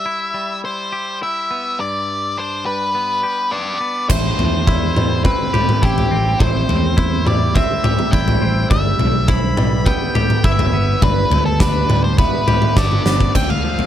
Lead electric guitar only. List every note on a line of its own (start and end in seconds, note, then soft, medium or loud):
0.00 0.60 E5 medium
0.65 1.18 C5 medium
1.23 1.80 E5 medium
1.80 2.39 D5 medium
2.38 2.66 C5 soft
2.66 3.77 B4 soft
3.51 4.05 D5 soft
4.09 5.24 C5 medium
5.24 5.84 B4 medium
5.83 6.42 G4 medium
6.39 7.27 C5 medium
7.27 7.57 D5 medium
7.55 8.12 E5 medium
8.12 8.66 G5 medium
8.70 9.30 E5 medium
9.28 9.88 B5 medium
9.86 10.46 G5 medium
10.45 11.04 E5 medium
11.03 11.43 B4 medium
11.46 11.61 A4 medium
11.61 12.04 B4 medium
12.04 12.18 C5 medium
12.19 13.02 B4 medium
12.77 13.31 D5 medium
13.36 13.50 G5 medium
13.50 13.86 F5 medium